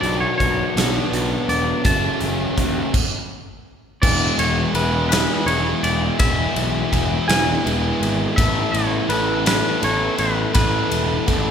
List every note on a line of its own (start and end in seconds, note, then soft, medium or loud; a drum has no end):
0.00 0.26 B1 medium
0.00 0.74 B2 medium
0.00 0.78 F#3 medium
0.00 0.75 B3 medium
0.00 0.75 D4 medium
0.00 0.19 D5 medium
0.00 closed hi-hat medium
0.20 0.36 C#5 medium
0.38 0.62 B1 medium
0.38 1.49 C#5 loud
0.38 kick medium
0.38 closed hi-hat medium
0.76 0.99 B1 medium
0.76 1.84 B2 medium
0.76 1.84 F#3 medium
0.76 1.84 B3 medium
0.76 1.83 D4 medium
0.76 snare loud
0.76 closed hi-hat medium
1.12 1.35 B1 medium
1.12 closed hi-hat medium
1.49 1.71 E1 medium
1.49 1.83 D5 loud
1.49 closed hi-hat medium
1.84 2.07 F#1 medium
1.84 2.91 F#2 medium
1.84 2.92 C#3 medium
1.84 2.92 F#3 medium
1.84 2.92 A3 medium
1.84 2.92 C#4 loud
1.84 3.63 A5 medium
1.84 kick loud
1.84 closed hi-hat medium
2.20 2.44 F#1 medium
2.20 closed hi-hat medium
2.58 2.80 D#2 medium
2.58 kick medium
2.58 closed hi-hat medium
2.94 kick loud
2.94 crash loud
4.02 4.28 E1 medium
4.02 5.12 E3 medium
4.02 4.75 G#3 medium
4.02 4.75 B3 loud
4.02 4.76 E4 medium
4.02 4.77 G#4 medium
4.02 4.39 D5 loud
4.02 kick loud
4.02 crash loud
4.38 4.64 E1 medium
4.38 4.73 C#5 medium
4.38 ride medium
4.74 5.25 E1 medium
4.74 5.11 G#3 medium
4.74 5.11 B3 medium
4.74 5.11 E4 medium
4.74 5.09 G#4 medium
4.74 5.08 B4 medium
4.74 ride medium
5.09 6.19 E3 medium
5.09 5.47 G#3 medium
5.09 5.49 B3 medium
5.09 5.49 E4 medium
5.09 5.49 G#4 medium
5.09 5.48 B4 medium
5.09 snare loud
5.09 ride loud
5.46 5.72 E1 medium
5.46 6.18 G#3 medium
5.46 6.20 B3 medium
5.46 6.21 E4 medium
5.46 6.20 G#4 medium
5.46 5.83 C#5 medium
5.46 ride medium
5.83 6.08 E1 medium
5.83 6.17 D5 loud
5.83 ride medium
6.19 6.45 E1 medium
6.19 7.30 E3 medium
6.19 6.91 G#3 medium
6.19 6.92 B3 medium
6.19 6.93 E4 medium
6.19 6.93 G#4 loud
6.19 7.27 E5 loud
6.19 kick loud
6.19 ride loud
6.56 6.81 B1 medium
6.56 ride medium
6.92 7.18 E1 medium
6.92 7.29 G#3 medium
6.92 7.29 B3 medium
6.92 7.29 E4 medium
6.92 7.27 G#4 medium
6.92 kick medium
6.92 ride medium
7.28 7.54 E1 medium
7.28 10.80 E3 medium
7.28 7.63 G#3 medium
7.28 7.64 B3 medium
7.28 7.65 E4 medium
7.28 7.65 G#4 medium
7.28 8.06 G#5 loud
7.28 snare loud
7.28 ride loud
7.64 7.91 E1 medium
7.64 8.35 G#3 medium
7.64 8.36 B3 medium
7.64 8.37 E4 medium
7.64 8.36 G#4 medium
7.64 ride medium
8.01 8.26 G#1 medium
8.01 ride medium
8.36 8.63 A1 loud
8.36 9.10 A3 medium
8.36 9.10 B3 medium
8.36 9.11 E4 loud
8.36 9.12 A4 medium
8.36 8.74 E5 loud
8.36 kick loud
8.36 ride loud
8.72 8.99 A1 medium
8.72 9.09 C#5 medium
8.72 ride medium
9.09 9.60 A1 medium
9.09 9.46 A3 medium
9.09 9.46 B3 medium
9.09 9.45 E4 medium
9.09 9.44 A4 medium
9.09 9.46 B4 medium
9.09 ride medium
9.45 9.80 A3 medium
9.45 9.81 B3 medium
9.45 9.81 E4 medium
9.45 9.82 A4 medium
9.45 9.84 B4 medium
9.45 snare loud
9.45 ride loud
9.81 10.08 A1 medium
9.81 10.52 A3 medium
9.81 10.54 B3 medium
9.81 10.54 E4 medium
9.81 10.55 A4 medium
9.81 10.19 C#5 medium
9.81 ride medium
10.18 10.44 A1 medium
10.18 10.53 B4 medium
10.18 ride medium
10.53 10.80 A1 loud
10.53 11.25 A3 medium
10.53 11.27 B3 medium
10.53 11.27 E4 medium
10.53 11.28 A4 loud
10.53 11.51 B4 loud
10.53 kick loud
10.53 ride loud
10.91 11.17 E1 medium
10.91 ride medium
11.26 11.51 A1 medium
11.26 11.51 A3 medium
11.26 11.51 B3 medium
11.26 11.51 E4 medium
11.26 11.51 A4 medium
11.26 kick medium
11.26 ride medium